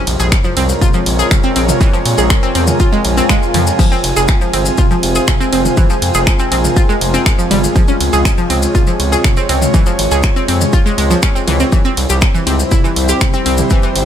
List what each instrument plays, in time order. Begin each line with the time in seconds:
Already playing: synth drone F2 C3, analog synth pad G#3 F4 A#4 C#5
0.07 analog synth bass A#1, open hi-hat, ride
0.20 analog synth bass A#1, synth arpeggio sound G#4, maracas
0.32 finger snap, kick, ride, maracas
0.43 synth arpeggio sound F3, analog synth pad C#5, maracas
0.57 analog synth bass C2, synth arpeggio sound C4, open hi-hat, ride
0.69 maracas
0.81 synth arpeggio sound F4, kick, mid tom, ride, maracas
0.93 synth arpeggio sound F3, analog synth pad G#5, maracas
1.06 analog synth bass A#1, open hi-hat, ride
1.19 synth arpeggio sound G#4, maracas
1.31 finger snap, kick, mid tom, ride, maracas
1.43 synth arpeggio sound C4, maracas
1.56 analog synth bass A#1, synth arpeggio sound C4, open hi-hat, ride
1.69 mid tom, maracas
1.81 synth arpeggio sound E3, kick, ride, maracas
1.93 synth arpeggio sound F3, maracas
2.06 analog synth bass A#2, open hi-hat, ride
2.18 analog synth bass A#1, synth arpeggio sound G#4, maracas
2.30 finger snap, kick, ride, maracas
2.43 synth arpeggio sound C4, maracas
2.55 analog synth bass E2, synth arpeggio sound C4, open hi-hat, ride
2.67 mid tom, maracas
2.80 synth arpeggio sound F4, kick, ride, swell, maracas
2.92 synth arpeggio sound G#3, maracas
3.05 analog synth bass A#1, open hi-hat, ride
3.17 synth arpeggio sound C4, maracas
3.29 synth arpeggio sound G#3, finger snap, kick, ride, maracas
3.43 maracas
3.54 analog synth bass F2, synth arpeggio sound F3, mid tom, open hi-hat, ride
3.67 maracas
3.79 synth drone F2 C3, synth arpeggio sound F3, analog synth pad G#3 C4 C5, kick, crash, ride, maracas
3.92 synth arpeggio sound C4, maracas
4.02 analog synth bass F1, analog synth pad G#4, open hi-hat, ride
4.16 analog synth bass F1, synth arpeggio sound G#4, maracas
4.28 finger snap, kick, ride, maracas
4.41 synth arpeggio sound F3, maracas
4.53 analog synth bass G1, synth arpeggio sound C4, open hi-hat, ride
4.64 analog synth pad C5, maracas
4.78 synth arpeggio sound F4, kick, mid tom, ride, maracas
4.91 synth arpeggio sound F3, maracas
5.03 analog synth bass F1, open hi-hat, ride
5.15 synth arpeggio sound G#4, maracas
5.28 finger snap, kick, mid tom, ride, maracas
5.40 synth arpeggio sound C4, maracas
5.52 analog synth bass F1, synth arpeggio sound C4, open hi-hat, ride
5.65 mid tom, maracas
5.77 synth arpeggio sound E3, analog synth pad A#4, kick, ride, maracas
5.90 synth arpeggio sound F3, maracas
6.02 analog synth bass F2, open hi-hat, ride
6.14 analog synth bass F1, synth arpeggio sound G#4, maracas
6.27 finger snap, kick, ride, maracas
6.39 synth arpeggio sound C4, maracas
6.52 analog synth bass A#1, synth arpeggio sound C4, open hi-hat, ride
6.64 mid tom, maracas
6.76 synth arpeggio sound F4, kick, ride, maracas
6.89 synth arpeggio sound G#3, maracas
7.01 analog synth bass F1, open hi-hat, ride
7.14 synth arpeggio sound C4, maracas
7.26 finger snap, kick, ride, maracas
7.39 synth arpeggio sound F3, maracas
7.51 analog synth bass G1, synth arpeggio sound G3, mid tom, open hi-hat, ride
7.64 maracas
7.75 synth arpeggio sound F3, analog synth pad C#5, kick, ride, maracas
7.88 synth arpeggio sound C#4, maracas
8.00 analog synth bass C#2, open hi-hat, ride
8.13 analog synth bass C#2, synth arpeggio sound G#4, maracas
8.25 analog synth pad C#5, finger snap, kick, ride, maracas
8.38 synth arpeggio sound F3, maracas
8.50 analog synth bass C#2, synth arpeggio sound C4, open hi-hat, ride
8.62 maracas
8.75 synth arpeggio sound F4, kick, mid tom, ride, maracas
8.87 synth arpeggio sound F3, maracas
9.00 analog synth bass C#2, open hi-hat, ride
9.12 synth arpeggio sound G#4, maracas
9.24 finger snap, kick, mid tom, ride, maracas
9.37 synth arpeggio sound C4, maracas
9.49 analog synth bass C#2, synth arpeggio sound C4, open hi-hat, ride
9.62 mid tom, maracas
9.74 synth arpeggio sound E3, kick, ride, maracas
9.86 synth arpeggio sound F3, maracas
9.99 analog synth bass G#1, open hi-hat, ride
10.11 analog synth bass C#2, synth arpeggio sound G#4, maracas
10.23 finger snap, kick, ride, maracas
10.36 synth arpeggio sound C4, maracas
10.48 analog synth bass F2, synth arpeggio sound C4, open hi-hat, ride
10.61 mid tom, maracas
10.73 synth arpeggio sound F4, kick, ride, maracas
10.86 synth arpeggio sound G#3, maracas
10.98 analog synth bass C#2, synth arpeggio sound G#3, open hi-hat, ride
11.11 synth arpeggio sound F3, maracas
11.22 synth arpeggio sound C#4, finger snap, kick, ride, maracas
11.35 synth arpeggio sound C4, maracas
11.47 analog synth bass C#2, synth arpeggio sound E3, mid tom, open hi-hat, ride
11.60 synth arpeggio sound C4, maracas
11.72 synth arpeggio sound E3, analog synth pad G3 C4 E4 C5, kick, ride, maracas
11.82 synth arpeggio sound C4, analog synth pad G4, maracas
11.97 analog synth bass C2, open hi-hat, ride
12.10 analog synth bass C2, synth arpeggio sound G4, maracas
12.21 finger snap, kick, ride, maracas
12.34 synth arpeggio sound E3, maracas
12.47 analog synth bass C#2, synth arpeggio sound C4, analog synth pad C5, open hi-hat, ride
12.60 maracas
12.71 synth arpeggio sound E4, kick, mid tom, ride, maracas
12.84 synth arpeggio sound E3, maracas
12.96 analog synth bass C2, open hi-hat, ride
13.04 analog synth pad G5
13.09 synth arpeggio sound G4, maracas
13.21 finger snap, kick, mid tom, ride, maracas
13.34 synth arpeggio sound C4, maracas
13.46 analog synth bass C2, synth arpeggio sound C4, open hi-hat, ride
13.58 mid tom, maracas
13.70 synth arpeggio sound E3, analog synth pad A#4, kick, ride, maracas
13.83 synth arpeggio sound E3, maracas
13.95 analog synth bass G1, open hi-hat, ride